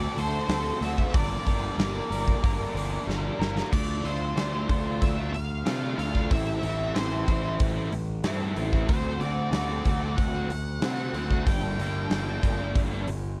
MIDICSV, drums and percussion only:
0, 0, Header, 1, 2, 480
1, 0, Start_track
1, 0, Tempo, 645161
1, 850, Time_signature, 4, 2, 24, 8
1, 9970, End_track
2, 0, Start_track
2, 0, Title_t, "Drums"
2, 131, Note_on_c, 9, 46, 62
2, 205, Note_off_c, 9, 46, 0
2, 366, Note_on_c, 9, 46, 86
2, 369, Note_on_c, 9, 38, 110
2, 440, Note_off_c, 9, 46, 0
2, 443, Note_off_c, 9, 38, 0
2, 613, Note_on_c, 9, 46, 62
2, 687, Note_off_c, 9, 46, 0
2, 730, Note_on_c, 9, 36, 74
2, 805, Note_off_c, 9, 36, 0
2, 848, Note_on_c, 9, 46, 80
2, 850, Note_on_c, 9, 36, 119
2, 923, Note_off_c, 9, 46, 0
2, 924, Note_off_c, 9, 36, 0
2, 1090, Note_on_c, 9, 46, 65
2, 1091, Note_on_c, 9, 36, 75
2, 1164, Note_off_c, 9, 46, 0
2, 1165, Note_off_c, 9, 36, 0
2, 1334, Note_on_c, 9, 46, 71
2, 1337, Note_on_c, 9, 38, 100
2, 1409, Note_off_c, 9, 46, 0
2, 1412, Note_off_c, 9, 38, 0
2, 1577, Note_on_c, 9, 46, 67
2, 1651, Note_off_c, 9, 46, 0
2, 1694, Note_on_c, 9, 36, 78
2, 1768, Note_off_c, 9, 36, 0
2, 1814, Note_on_c, 9, 36, 102
2, 1817, Note_on_c, 9, 46, 81
2, 1888, Note_off_c, 9, 36, 0
2, 1891, Note_off_c, 9, 46, 0
2, 2061, Note_on_c, 9, 46, 68
2, 2136, Note_off_c, 9, 46, 0
2, 2305, Note_on_c, 9, 38, 67
2, 2379, Note_off_c, 9, 38, 0
2, 2542, Note_on_c, 9, 38, 94
2, 2616, Note_off_c, 9, 38, 0
2, 2659, Note_on_c, 9, 38, 87
2, 2734, Note_off_c, 9, 38, 0
2, 2773, Note_on_c, 9, 36, 99
2, 2775, Note_on_c, 9, 49, 117
2, 2848, Note_off_c, 9, 36, 0
2, 2850, Note_off_c, 9, 49, 0
2, 3013, Note_on_c, 9, 46, 60
2, 3088, Note_off_c, 9, 46, 0
2, 3254, Note_on_c, 9, 46, 66
2, 3257, Note_on_c, 9, 38, 98
2, 3328, Note_off_c, 9, 46, 0
2, 3331, Note_off_c, 9, 38, 0
2, 3492, Note_on_c, 9, 36, 91
2, 3492, Note_on_c, 9, 46, 58
2, 3567, Note_off_c, 9, 36, 0
2, 3567, Note_off_c, 9, 46, 0
2, 3733, Note_on_c, 9, 46, 70
2, 3734, Note_on_c, 9, 36, 99
2, 3808, Note_off_c, 9, 36, 0
2, 3808, Note_off_c, 9, 46, 0
2, 3976, Note_on_c, 9, 46, 63
2, 4050, Note_off_c, 9, 46, 0
2, 4213, Note_on_c, 9, 46, 81
2, 4216, Note_on_c, 9, 38, 107
2, 4288, Note_off_c, 9, 46, 0
2, 4291, Note_off_c, 9, 38, 0
2, 4457, Note_on_c, 9, 46, 63
2, 4531, Note_off_c, 9, 46, 0
2, 4575, Note_on_c, 9, 36, 74
2, 4580, Note_on_c, 9, 38, 31
2, 4649, Note_off_c, 9, 36, 0
2, 4654, Note_off_c, 9, 38, 0
2, 4693, Note_on_c, 9, 46, 80
2, 4694, Note_on_c, 9, 36, 107
2, 4768, Note_off_c, 9, 46, 0
2, 4769, Note_off_c, 9, 36, 0
2, 4933, Note_on_c, 9, 46, 64
2, 5008, Note_off_c, 9, 46, 0
2, 5177, Note_on_c, 9, 46, 77
2, 5180, Note_on_c, 9, 38, 107
2, 5251, Note_off_c, 9, 46, 0
2, 5254, Note_off_c, 9, 38, 0
2, 5416, Note_on_c, 9, 36, 93
2, 5419, Note_on_c, 9, 46, 62
2, 5491, Note_off_c, 9, 36, 0
2, 5493, Note_off_c, 9, 46, 0
2, 5652, Note_on_c, 9, 46, 82
2, 5655, Note_on_c, 9, 36, 105
2, 5726, Note_off_c, 9, 46, 0
2, 5729, Note_off_c, 9, 36, 0
2, 5896, Note_on_c, 9, 46, 63
2, 5970, Note_off_c, 9, 46, 0
2, 6129, Note_on_c, 9, 46, 77
2, 6132, Note_on_c, 9, 38, 105
2, 6203, Note_off_c, 9, 46, 0
2, 6206, Note_off_c, 9, 38, 0
2, 6371, Note_on_c, 9, 46, 59
2, 6446, Note_off_c, 9, 46, 0
2, 6494, Note_on_c, 9, 36, 82
2, 6497, Note_on_c, 9, 38, 31
2, 6569, Note_off_c, 9, 36, 0
2, 6572, Note_off_c, 9, 38, 0
2, 6611, Note_on_c, 9, 46, 77
2, 6615, Note_on_c, 9, 36, 106
2, 6686, Note_off_c, 9, 46, 0
2, 6689, Note_off_c, 9, 36, 0
2, 6850, Note_on_c, 9, 46, 51
2, 6925, Note_off_c, 9, 46, 0
2, 7088, Note_on_c, 9, 46, 70
2, 7091, Note_on_c, 9, 38, 98
2, 7162, Note_off_c, 9, 46, 0
2, 7165, Note_off_c, 9, 38, 0
2, 7328, Note_on_c, 9, 46, 60
2, 7332, Note_on_c, 9, 36, 84
2, 7403, Note_off_c, 9, 46, 0
2, 7407, Note_off_c, 9, 36, 0
2, 7574, Note_on_c, 9, 36, 98
2, 7574, Note_on_c, 9, 46, 73
2, 7648, Note_off_c, 9, 36, 0
2, 7649, Note_off_c, 9, 46, 0
2, 7813, Note_on_c, 9, 46, 64
2, 7888, Note_off_c, 9, 46, 0
2, 8049, Note_on_c, 9, 46, 84
2, 8052, Note_on_c, 9, 38, 117
2, 8124, Note_off_c, 9, 46, 0
2, 8127, Note_off_c, 9, 38, 0
2, 8291, Note_on_c, 9, 46, 59
2, 8365, Note_off_c, 9, 46, 0
2, 8411, Note_on_c, 9, 36, 80
2, 8414, Note_on_c, 9, 38, 30
2, 8485, Note_off_c, 9, 36, 0
2, 8488, Note_off_c, 9, 38, 0
2, 8531, Note_on_c, 9, 36, 106
2, 8534, Note_on_c, 9, 46, 84
2, 8606, Note_off_c, 9, 36, 0
2, 8608, Note_off_c, 9, 46, 0
2, 8775, Note_on_c, 9, 46, 58
2, 8849, Note_off_c, 9, 46, 0
2, 9008, Note_on_c, 9, 46, 71
2, 9011, Note_on_c, 9, 38, 98
2, 9082, Note_off_c, 9, 46, 0
2, 9085, Note_off_c, 9, 38, 0
2, 9249, Note_on_c, 9, 36, 91
2, 9251, Note_on_c, 9, 46, 66
2, 9324, Note_off_c, 9, 36, 0
2, 9325, Note_off_c, 9, 46, 0
2, 9490, Note_on_c, 9, 36, 105
2, 9492, Note_on_c, 9, 46, 75
2, 9564, Note_off_c, 9, 36, 0
2, 9567, Note_off_c, 9, 46, 0
2, 9728, Note_on_c, 9, 46, 66
2, 9803, Note_off_c, 9, 46, 0
2, 9970, End_track
0, 0, End_of_file